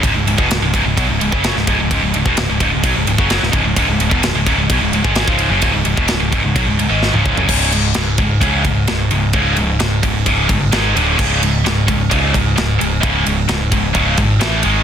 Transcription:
<<
  \new Staff \with { instrumentName = "Distorted electric guitar" } { \clef bass \time 4/4 \key cis \minor \tempo 4 = 129 <cis, gis,>16 <cis, gis,>16 <cis, gis,>16 <e, b,>16 <cis, gis,>16 <cis, gis,>16 <cis, gis,>16 <cis, gis,>16 <b, fis>16 <cis, gis,>16 <cis, gis,>16 <fis, cis fis>8 <cis, gis,>16 <cis, gis,>16 <cis, gis,>16 | <cis, gis,>16 <cis, gis,>16 <cis, gis,>16 <e, b,>16 <cis, gis,>16 <cis, gis,>16 <cis, gis,>16 <cis, gis,>16 <b, fis>16 <cis, gis,>16 <cis, gis,>16 <fis, cis fis>8 <cis, gis,>16 <cis, gis,>16 <cis, gis,>16 | <cis, gis,>16 <cis, gis,>16 <cis, gis,>16 <e, b,>16 <cis, gis,>16 <cis, gis,>16 <cis, gis,>16 <cis, gis,>16 <b, fis>16 <cis, gis,>16 <cis, gis,>16 <gis, dis gis>8 <cis, gis, cis>8 <fis, cis>16 | <cis, gis,>16 <cis, gis,>16 <cis, gis,>16 <e, b,>16 <cis, gis,>16 <cis, gis,>16 <cis, gis,>16 <cis, gis,>16 <b, fis>16 <cis, gis,>16 <cis, gis,>16 <gis, dis gis>8 <cis, gis, cis>8 <fis, cis>16 |
<cis, gis, cis>8 <cis, gis,>8 <cis, gis,>8 <cis, gis,>8 <cis, gis, cis>8 <cis, gis,>8 <cis, gis,>8 <cis, gis,>8 | <cis, gis, cis>8 <cis, gis,>8 <cis, gis,>8 <cis, gis,>8 <cis, gis, cis>8 <cis, gis,>8 <gis, dis gis>8 <d, a, d>8 | <cis, gis, cis>8 <cis, gis,>8 <cis, gis,>8 <cis, gis,>8 <cis, gis, cis>8 <cis, gis,>8 <cis, gis,>8 <cis, gis,>8 | <cis, gis, cis>8 <cis, gis,>8 <cis, gis,>8 <cis, gis,>8 <cis, gis, cis>8 <cis, gis,>8 <a, e a>8 <gis, dis gis>8 | }
  \new Staff \with { instrumentName = "Picked electric bass" } { \clef bass \time 4/4 \key cis \minor cis,,16 cis,,16 cis,,16 e,,16 cis,,16 cis,,16 cis,,16 cis,,16 b,,16 cis,,16 cis,,16 fis,,8 cis,,16 cis,,16 cis,,16 | cis,,16 cis,,16 cis,,16 e,,16 cis,,16 cis,,16 cis,,16 cis,,16 b,,16 cis,,16 cis,,16 fis,,8 cis,,16 cis,,16 cis,,16 | cis,,16 cis,,16 cis,,16 e,,16 cis,,16 cis,,16 cis,,16 cis,,16 b,,16 cis,,16 cis,,16 gis,,8 cis,,8 fis,,16 | cis,,16 cis,,16 cis,,16 e,,16 cis,,16 cis,,16 cis,,16 cis,,16 b,,16 cis,,16 cis,,16 gis,,8 cis,,8 fis,,16 |
cis,,4 cis,,8 cis,,8 cis,4 cis,,8 cis,,8 | cis,,8 cis,,8 cis,,8 cis,,8 cis,,8 g,,8 gis,,8 d,,8 | cis,,4 cis,,8 cis,,8 cis,4 cis,,8 cis,,8 | cis,,8 cis,,8 cis,,8 cis,,8 cis,,8 gis,,8 a,,8 gis,,8 | }
  \new DrumStaff \with { instrumentName = "Drums" } \drummode { \time 4/4 <bd cymr>8 cymr16 bd16 <cymr sn>8 <bd cymr>8 <bd cymr>8 cymr16 bd16 <cymr sn>16 sn16 <bd cymr>8 | <bd cymr>8 cymr16 bd16 <cymr sn>8 <bd cymr>8 <bd cymr>8 cymr16 bd16 <cymr sn>16 sn16 <bd cymr>8 | <bd cymr>8 cymr16 bd16 <cymr sn>8 <bd cymr>8 <bd cymr>8 cymr16 bd16 <cymr sn>16 bd16 cymr8 | <bd cymr>8 cymr16 bd16 <cymr sn>8 <bd cymr>8 <bd cymr>8 cymr8 sn16 toml16 bd16 tomfh16 |
<cymc bd>8 cymr8 <cymr sn>8 <bd cymr>8 <bd cymr>8 <bd cymr>8 <cymr sn>8 cymr8 | <bd cymr>8 cymr8 <cymr sn>8 <bd cymr>8 <bd cymr>8 <bd cymr>8 <cymr sn>8 cymr8 | <cymc bd>8 cymr8 <cymr sn>8 <bd cymr>8 <bd cymr>8 <bd cymr>8 <cymr sn>8 cymr8 | <bd cymr>8 cymr8 <cymr sn>8 <bd cymr>8 <bd cymr>8 <bd cymr>8 <cymr sn>8 cymr8 | }
>>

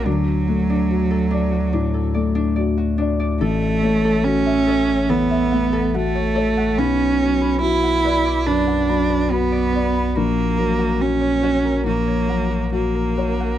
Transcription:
<<
  \new Staff \with { instrumentName = "Harp" } { \time 4/4 \key b \minor \tempo 4 = 71 <d' fis' fis''>8 fis'16 d'8 a'16 d'16 fis'16 d'16 a'16 d''16 d'16 d''16 fis'16 d'16 d''16 | a'8 cis''16 a'8 e''16 a'16 cis''16 a'16 e''16 fis''16 a'16 fis''16 cis''16 a'16 fis''16 | b'8. b'8 fis''16 b'16 d''16 b'16 fis''16 b''16 b'16 b''16 d''16 b'16 b''16 | fis'8 ais'16 fis'8 cis''16 fis'16 ais'16 fis'16 cis''16 fis''16 fis'16 fis''16 ais'16 fis'16 fis''16 | }
  \new Staff \with { instrumentName = "Felt piano" } { \time 4/4 \key b \minor d,8 a8 fis'8 d''8 a,8 a8 fis'8 d''8 | a,,8 a8 fis'8 cis''8 e,8 a8 fis'8 cis''8 | b,,8 fis8 fis'8 d''8 fis,8 fis8 fis'8 d''8 | ais,,8 fis8 fis'8 cis''8 ais,,8 fis8 fis'8 cis''8 | }
  \new Staff \with { instrumentName = "Cello" } { \time 4/4 \key b \minor fis2. r4 | a4 cis'4 b4 a4 | cis'4 e'4 d'4 b4 | ais4 cis'4 ais4 ais4 | }
  \new Staff \with { instrumentName = "Sub bass" } { \clef bass \time 4/4 \key b \minor d,1 | a,,1 | b,,1 | ais,,1 | }
>>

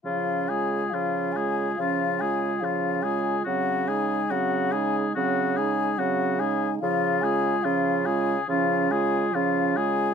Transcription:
<<
  \new Staff \with { instrumentName = "Flute" } { \time 4/4 \key des \major \tempo 4 = 71 f''8 aes''8 f''8 aes''8 f''8 aes''8 f''8 aes''8 | ges''8 aes''8 ges''8 aes''8 ges''8 aes''8 ges''8 aes''8 | f''8 aes''8 f''8 aes''8 f''8 aes''8 f''8 aes''8 | }
  \new Staff \with { instrumentName = "Oboe" } { \time 4/4 \key des \major f'8 aes'8 f'8 aes'8 f'8 aes'8 f'8 aes'8 | ges'8 aes'8 ges'8 aes'8 ges'8 aes'8 ges'8 aes'8 | f'8 aes'8 f'8 aes'8 f'8 aes'8 f'8 aes'8 | }
  \new Staff \with { instrumentName = "Clarinet" } { \time 4/4 \key des \major des'8 f'8 des'8 f'8 des'8 f'8 des'8 f'8 | c'8 ees'8 c'8 ees'8 c'8 ees'8 c'8 ees'8 | des'8 f'8 des'8 f'8 des'8 f'8 des'8 f'8 | }
  \new Staff \with { instrumentName = "French horn" } { \clef bass \time 4/4 \key des \major f8 aes8 f8 aes8 f8 aes8 f8 aes8 | ges8 aes8 ges8 aes8 ges8 aes8 ges8 aes8 | f8 aes8 f8 aes8 f8 aes8 f8 aes8 | }
  \new Staff \with { instrumentName = "Bassoon" } { \clef bass \time 4/4 \key des \major des4 des4 des4 des4 | des4 des4 des4 des4 | des4 des4 des4 des4 | }
>>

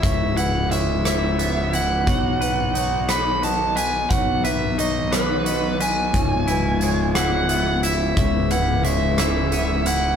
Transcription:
<<
  \new Staff \with { instrumentName = "Lead electric guitar" } { \time 6/8 \key cis \minor \tempo 4. = 59 e''8 fis''8 e''8 e''4 fis''8~ | fis''4. b''8 a''8 gis''8 | fis''8 e''8 dis''8 b'4 gis''8~ | gis''4. fis''4 e''8 |
e''8 fis''8 e''8 e''4 fis''8 | }
  \new Staff \with { instrumentName = "Clean electric guitar" } { \time 6/8 \key cis \minor cis''8 b'8 cis''4 e''4 | cis''8 b'8 cis''4 dis''4 | cis''8 b'8 cis''4 dis''4 | cis''8 b'8 cis''4 e''4 |
cis''8 b'8 cis''4 e''4 | }
  \new Staff \with { instrumentName = "Clean electric guitar" } { \time 6/8 \key cis \minor <cis, gis b e'>8 e'8 gis8 e'8 b8 e'8 | b,8 b'8 dis'8 b'8 fis'8 b'8 | b,8 b'8 dis'8 b'8 fis'8 b'8 | cis,8 e'8 gis8 e'8 b8 e'8 |
cis,8 e'8 gis8 e'8 b8 e'8 | }
  \new Staff \with { instrumentName = "Ambient pad" } { \clef bass \time 6/8 \key cis \minor << { <cis e gis e'>2. | dis2.~ | dis2. | <cis e gis e'>2.~ |
<cis e gis e'>2. | } \\ { b2. | fis2.~ | fis2. | r2. |
cis'2. | } >> }
  \new Staff \with { instrumentName = "Fingered electric bass" } { \clef bass \time 6/8 \key cis \minor cis,,2. | b,,2. | b,,2. | cis,,2. |
cis,,2. | }
  \new DrumStaff \with { instrumentName = "Drums" } \drummode { \time 6/8 <hh bd>8 hh8 hh8 <hh ss>8 hh8 hh8 | <hh bd>8 hh8 hh8 <hh ss>8 hh8 hh8 | <hh bd>8 hh8 hh8 <hh ss>8 hh8 hh8 | <hh bd>8 hh8 hh8 <hh ss>8 hh8 hh8 |
<hh bd>8 hh8 hh8 <hh ss>8 hh8 hh8 | }
>>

